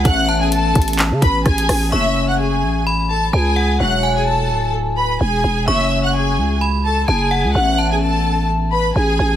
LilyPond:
<<
  \new Staff \with { instrumentName = "Synth bell" } { \time 4/4 \key fis \minor \tempo 4 = 128 r8 a''2.~ a''8 | cis'''2 b''4 a''8 fis''8 | r8 gis''2~ gis''8 r4 | cis'''2 b''4 a''8 fis''8 |
r8 a''2.~ a''8 | }
  \new Staff \with { instrumentName = "Violin section" } { \time 4/4 \key fis \minor <fis'' fis'''>8. <gis' gis''>16 <a' a''>4 r8 <b' b''>8 <gis' gis''>4 | <e'' e'''>8. <fis'' fis'''>16 <gis' gis''>4 r8 <a' a''>8 <gis' gis''>4 | <fis'' fis'''>8. <gis' gis''>16 <a' a''>4 r8 <b' b''>8 <gis' gis''>4 | <e'' e'''>8. <fis'' fis'''>16 <gis' gis''>4 r8 <a' a''>8 <gis' gis''>4 |
<fis'' fis'''>8. <gis' gis''>16 <a' a''>4 r8 <b' b''>8 <gis' gis''>4 | }
  \new Staff \with { instrumentName = "Harp" } { \time 4/4 \key fis \minor <a b cis'>1 | <fis a cis'>1 | <fis e' fis'>1 | <fis a cis'>1 |
<a b cis'>1 | }
  \new Staff \with { instrumentName = "808-style bass" } { \clef bass \time 4/4 \key fis \minor a,,4. a,,8. cis16 a,,8 a,,8 a,,8 | fis,,4. a,,4. cis,4 | e,,4. d,,4. e,,8 e,,8 | fis,,4. cis,4. fis,,8. cis,16 |
a,,2. a,,8 a,,8 | }
  \new DrumStaff \with { instrumentName = "Drums" } \drummode { \time 4/4 <hh bd>4 hh8 <hh bd>32 hh32 hh32 hh32 <hc hh>8 <hh bd>8 <hh bd ss>16 hh16 <hho ss>8 | r4 r4 r4 r4 | r4 r4 r4 r4 | r4 r4 r4 r4 |
r4 r4 r4 r4 | }
>>